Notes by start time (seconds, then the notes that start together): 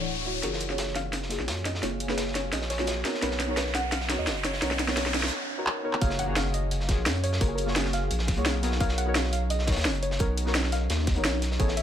Already playing: D1 E3 D4 F#4 C#5, riser
0.00 A3 D4 E4 F#4 C#5
0.25 A3 D4 E4 F#4 C#5
0.43 F#1 F#3 A#3 F4 F#4 G#4 A#4 C#5 F5, snare, closed hi-hat, riser
0.53 snare
0.60 closed hi-hat
0.68 A#3 F4 F#4 G#4 C#5, snare
0.78 snare, closed hi-hat
0.88 snare
0.95 F5, snare, closed hi-hat
1.13 snare, closed hi-hat
1.23 snare
1.29 A#3 F4 F#4 G#4 C#5, snare, closed hi-hat
1.39 A#1, snare
1.48 F#2, snare, closed hi-hat
1.57 closed hi-hat
1.65 D#5, snare, closed hi-hat
1.75 snare
1.82 F#1 A#3 F4 F#4 G#4 C#5, snare, closed hi-hat
2.00 closed hi-hat
2.07 A#3 F4 F#4 G#4 B4 C#5, snare
2.18 snare, closed hi-hat
2.28 snare
2.35 C#5, snare, closed hi-hat
2.53 A#1 D#5, snare, closed hi-hat
2.62 snare
2.70 C#5, snare, closed hi-hat, open hi-hat
2.78 A#3 F4 F#4 G#4 C#5, snare, closed hi-hat
2.87 snare, closed hi-hat
3.04 B3 C#4 D#4 F#4 A#4 C#5, snare, closed hi-hat
3.14 snare
3.21 B1 B3 D#4 F#4 A#4 B4 C#5, snare, closed hi-hat
3.31 snare
3.40 snare, closed hi-hat
3.47 B3 D#4 F#4 A#4 C#5
3.57 B4, snare, closed hi-hat
3.67 snare
3.74 F#5, snare, closed hi-hat, open hi-hat
3.92 F5, snare, closed hi-hat
4.01 snare
4.08 B3 D#4 F#4 A#4 C#5, snare, closed hi-hat
4.19 D#2 D#5
4.27 F#1, snare, closed hi-hat
4.37 closed hi-hat
4.44 C#5, snare, closed hi-hat, open hi-hat
4.53 snare
4.61 B1 B3 D#4 F#4 A#4 C#5, snare, closed hi-hat, noise sweep
4.71 snare
4.79 snare, closed hi-hat
4.87 B3 D#4 F#4 A#4 C#5, snare
4.97 snare, closed hi-hat
5.06 snare
5.14 snare, closed hi-hat, open hi-hat
5.19 snare, closed hi-hat
5.23 snare, closed hi-hat
5.28 snare, closed hi-hat
5.57 B3 D#4 F#4 A#4 C#5
5.67 clap
5.83 B3 D#4 F#4 A#4 C#5
5.93 clap
6.01 F#1 F#3 A#3 F4 F#4 G#4 C#5 F5, kick, closed hi-hat, impact
6.10 snare
6.19 F#5, closed hi-hat
6.26 A#3 F4 F#4 G#4 C#5
6.32 F#5
6.36 F5, snare, closed hi-hat
6.45 snare
6.54 D#5, closed hi-hat, open hi-hat
6.71 closed hi-hat
6.80 snare
6.87 A#3 F4 F#4 G#4 C#5, kick, snare, closed hi-hat
6.98 A#1
7.06 F#2, snare, closed hi-hat
7.15 closed hi-hat
7.24 C#5, closed hi-hat, open hi-hat
7.33 snare
7.40 F#1 A#3 F4 F#4 G#4 A#4 C#5, kick, closed hi-hat
7.48 G#4
7.55 A#4, closed hi-hat
7.66 A#3 F4 F#4 G#4 C#5, snare
7.76 snare, closed hi-hat
7.85 snare
7.93 F5, snare, closed hi-hat, open hi-hat
8.11 A#1, closed hi-hat
8.19 snare
8.27 kick, snare, closed hi-hat, open hi-hat
8.36 C#2 A#3 F4 F#4 G#4 C#5, closed hi-hat
8.45 B1, snare, closed hi-hat
8.62 B3 C#4 D#4 F#4 A#4 C#5, snare, closed hi-hat, open hi-hat
8.72 snare
8.80 B1 B3 D#4 F#4 A#4 C#5 F5, kick, closed hi-hat
8.89 snare
8.98 F#5, closed hi-hat
9.05 B3 D#4 F#4 A#4 C#5
9.15 F5, snare, closed hi-hat
9.24 snare
9.33 F5, closed hi-hat, open hi-hat
9.50 D#5, closed hi-hat
9.59 snare
9.66 B3 D#4 F#4 A#4 C#5, kick, snare, closed hi-hat
9.72 snare, closed hi-hat
9.76 D#2, snare, closed hi-hat
9.80 snare, closed hi-hat
9.85 F#1, snare, closed hi-hat
9.94 closed hi-hat
10.03 C#5, closed hi-hat, open hi-hat
10.11 snare
10.19 B1 B3 D#4 F#4 A#4 C#5, kick, closed hi-hat
10.37 closed hi-hat
10.45 B3 D#4 F#4 A#4 C#5, snare
10.55 snare, closed hi-hat
10.63 snare
10.72 F5, snare, closed hi-hat, open hi-hat
10.90 D#2, snare, closed hi-hat
10.99 snare
11.07 kick, snare, closed hi-hat, open hi-hat
11.15 F#1 B3 D#4 F#4 A#4 C#5, closed hi-hat
11.25 B1, snare, closed hi-hat
11.42 snare, closed hi-hat, open hi-hat
11.51 snare
11.59 A1 A3 B3 E4 G#4 A4 C#5 G#5, kick, closed hi-hat
11.68 snare
11.77 E5, closed hi-hat